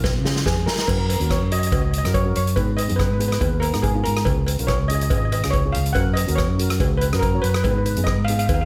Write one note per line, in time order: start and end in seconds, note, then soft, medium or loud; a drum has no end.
0.00 0.16 B1 medium
0.00 cowbell medium
0.04 kick loud
0.04 snare medium
0.14 0.43 C#3 medium
0.24 0.63 C#4 medium
0.24 0.63 F4 medium
0.24 0.63 G#4 medium
0.24 snare medium
0.36 snare medium
0.46 0.66 F2 medium
0.46 0.66 G#4 medium
0.46 kick medium
0.46 snare medium
0.46 cowbell medium
0.66 0.73 A#4 medium
0.66 snare medium
0.74 0.80 A#4 soft
0.78 0.88 A#4 medium
0.78 snare medium
0.88 1.18 F#2 medium
0.88 1.07 C#4 medium
0.88 1.07 F#4 medium
0.88 1.08 A#4 medium
0.88 kick medium
0.88 crash medium
0.88 cowbell medium
0.98 1.05 A#4 medium
1.06 1.12 A#4 soft
1.06 closed hi-hat medium
1.06 cowbell medium
1.13 1.21 A#4 medium
1.20 1.40 D#2 medium
1.20 1.39 C#4 medium
1.20 1.40 F#4 medium
1.20 1.40 A#4 medium
1.20 closed hi-hat medium
1.30 1.53 C#5 medium
1.30 kick medium
1.30 cross-stick medium
1.30 closed hi-hat medium
1.30 cowbell medium
1.40 1.70 F#2 medium
1.51 1.64 C#4 medium
1.51 1.65 F#4 medium
1.51 1.65 C#5 medium
1.51 1.58 D#5 medium
1.51 closed hi-hat medium
1.59 1.66 D#5 medium
1.59 closed hi-hat medium
1.67 1.73 D#5 medium
1.72 2.02 C#2 medium
1.72 1.92 C#4 medium
1.72 1.92 F#4 medium
1.72 1.92 C#5 medium
1.72 1.80 D#5 medium
1.72 kick loud
1.72 closed hi-hat medium
1.72 cowbell medium
1.82 1.90 D#5 medium
1.91 1.97 D#5 soft
1.91 closed hi-hat medium
1.98 2.06 D#5 medium
2.04 2.34 F#2 medium
2.04 2.17 C#4 medium
2.04 2.17 F#4 medium
2.04 2.18 A#4 medium
2.04 cross-stick medium
2.04 closed hi-hat medium
2.14 2.24 C#5 medium
2.14 kick medium
2.14 closed hi-hat medium
2.14 cowbell medium
2.25 2.45 C#4 medium
2.25 2.45 F#4 medium
2.25 2.45 A#4 medium
2.36 2.56 F#2 medium
2.36 2.56 C#5 medium
2.36 closed hi-hat medium
2.47 closed hi-hat medium
2.56 2.87 G#2 medium
2.56 2.76 B3 medium
2.56 2.76 D#4 medium
2.56 2.77 G#4 medium
2.56 2.78 B4 medium
2.56 kick medium
2.56 closed hi-hat medium
2.56 cowbell medium
2.77 2.87 D#5 medium
2.77 closed hi-hat medium
2.77 cowbell medium
2.88 3.11 F#2 medium
2.88 3.08 B3 medium
2.88 3.08 D#4 medium
2.88 3.08 G#4 medium
2.88 closed hi-hat medium
2.96 3.04 B4 medium
2.96 kick medium
2.96 cross-stick medium
2.96 closed hi-hat soft
2.96 cowbell medium
3.06 3.12 B4 soft
3.11 3.40 G#2 medium
3.11 3.19 B4 medium
3.18 3.33 B3 medium
3.18 3.33 D#4 medium
3.18 3.34 G#4 medium
3.18 3.27 B4 medium
3.18 closed hi-hat medium
3.28 3.34 B4 medium
3.32 3.42 B4 medium
3.32 cross-stick medium
3.32 closed hi-hat medium
3.40 3.72 D#2 medium
3.40 3.60 B3 medium
3.40 3.61 D#4 medium
3.40 3.61 G#4 medium
3.40 3.53 B4 medium
3.40 kick loud
3.40 closed hi-hat medium
3.40 cowbell medium
3.60 3.81 A#4 medium
3.60 closed hi-hat medium
3.60 cowbell medium
3.73 4.03 G#2 medium
3.73 3.86 B3 medium
3.73 3.86 D#4 medium
3.73 3.86 G#4 medium
3.73 cross-stick medium
3.73 closed hi-hat soft
3.82 4.05 G#4 medium
3.82 kick medium
3.82 closed hi-hat medium
3.82 cowbell medium
3.94 4.14 B3 medium
3.94 4.14 D#4 medium
3.94 4.14 F4 medium
4.04 4.25 G#2 medium
4.04 4.70 A#4 medium
4.04 closed hi-hat medium
4.17 cross-stick medium
4.17 closed hi-hat soft
4.25 4.56 C#2 medium
4.25 4.45 C#4 medium
4.25 4.45 F4 medium
4.25 4.46 G#4 medium
4.25 kick medium
4.25 closed hi-hat soft
4.25 cowbell medium
4.46 closed hi-hat medium
4.46 cowbell medium
4.59 4.81 B1 medium
4.59 4.78 C#4 medium
4.59 4.78 F4 medium
4.59 4.79 A#4 medium
4.59 closed hi-hat medium
4.67 4.90 C#5 medium
4.67 kick medium
4.67 cross-stick medium
4.67 closed hi-hat medium
4.67 cowbell medium
4.81 5.09 C#2 medium
4.88 5.03 C#4 medium
4.88 5.04 F4 medium
4.88 5.04 G#4 medium
4.88 4.94 D#5 medium
4.88 closed hi-hat medium
4.95 5.02 D#5 medium
5.01 5.09 D#5 medium
5.01 closed hi-hat medium
5.10 5.41 G#1 medium
5.10 5.30 C#4 medium
5.10 5.30 F4 medium
5.10 5.31 G#4 medium
5.10 5.16 D#5 medium
5.10 kick loud
5.10 closed hi-hat medium
5.10 cowbell medium
5.17 5.24 D#5 medium
5.25 5.32 D#5 medium
5.32 5.42 D#5 medium
5.32 closed hi-hat medium
5.32 cowbell medium
5.44 5.73 C#2 medium
5.44 5.56 C#4 medium
5.44 5.56 F4 medium
5.44 5.56 G#4 medium
5.44 cross-stick medium
5.44 closed hi-hat medium
5.51 5.74 C#5 medium
5.51 kick medium
5.51 closed hi-hat medium
5.51 cowbell medium
5.65 5.84 C#4 medium
5.65 5.84 F4 medium
5.65 5.84 G#4 medium
5.72 5.95 C#2 medium
5.72 5.95 F5 medium
5.72 closed hi-hat medium
5.86 closed hi-hat medium
5.93 6.26 F#2 medium
5.93 6.14 C#4 medium
5.93 6.15 F#4 medium
5.93 6.15 A#4 medium
5.93 6.16 F#5 medium
5.93 kick medium
5.93 closed hi-hat medium
5.93 cowbell medium
6.14 6.37 D#5 medium
6.14 closed hi-hat medium
6.14 cowbell medium
6.27 6.49 D#2 medium
6.27 6.47 C#4 medium
6.27 6.47 F#4 medium
6.27 6.47 A#4 medium
6.27 closed hi-hat medium
6.35 7.02 C#5 medium
6.35 kick medium
6.35 cross-stick medium
6.35 closed hi-hat soft
6.35 cowbell medium
6.49 6.78 F#2 medium
6.58 6.72 C#4 medium
6.58 6.72 F#4 medium
6.58 6.72 A#4 medium
6.58 closed hi-hat medium
6.70 cross-stick medium
6.70 closed hi-hat medium
6.79 7.10 C#2 medium
6.79 6.99 C#4 medium
6.79 7.00 F#4 medium
6.79 7.00 G#4 medium
6.79 kick loud
6.79 closed hi-hat medium
6.79 cowbell medium
6.97 7.21 B4 medium
6.97 closed hi-hat medium
7.02 cowbell medium
7.13 7.42 F#2 medium
7.13 7.25 C#4 medium
7.13 7.25 F#4 medium
7.13 7.26 A#4 medium
7.13 cross-stick medium
7.13 closed hi-hat soft
7.19 7.43 A#4 medium
7.19 kick medium
7.19 closed hi-hat medium
7.19 cowbell medium
7.34 7.53 C#4 medium
7.34 7.53 F#4 medium
7.34 7.53 C#5 medium
7.42 7.63 F#2 medium
7.42 7.48 B4 medium
7.42 closed hi-hat medium
7.49 7.55 B4 medium
7.54 7.62 B4 medium
7.54 cross-stick medium
7.54 closed hi-hat medium
7.64 7.95 G#2 medium
7.64 7.84 B3 medium
7.64 7.84 D#4 medium
7.64 7.85 G#4 medium
7.64 7.70 B4 medium
7.64 kick loud
7.64 closed hi-hat soft
7.64 cowbell medium
7.71 7.77 B4 medium
7.78 7.85 B4 medium
7.86 7.96 B4 medium
7.86 closed hi-hat medium
7.97 8.18 F#2 medium
7.97 8.16 B3 medium
7.97 8.16 D#4 medium
7.97 8.17 G#4 medium
7.97 closed hi-hat medium
8.04 8.14 D#5 medium
8.04 kick medium
8.04 cross-stick medium
8.04 closed hi-hat soft
8.04 cowbell medium
8.18 8.47 G#2 medium
8.25 8.42 B3 medium
8.25 8.30 F5 medium
8.25 closed hi-hat medium
8.29 8.42 D#4 medium
8.29 8.42 G#4 medium
8.29 8.38 F5 medium
8.39 8.45 F5 medium
8.39 closed hi-hat medium
8.46 8.65 D#2 medium
8.46 8.65 B3 medium
8.46 8.65 D#4 medium
8.46 8.53 F5 medium
8.46 kick loud
8.46 closed hi-hat medium
8.46 cowbell medium
8.51 8.65 G#4 medium
8.51 8.60 F5 medium
8.61 8.65 F5 medium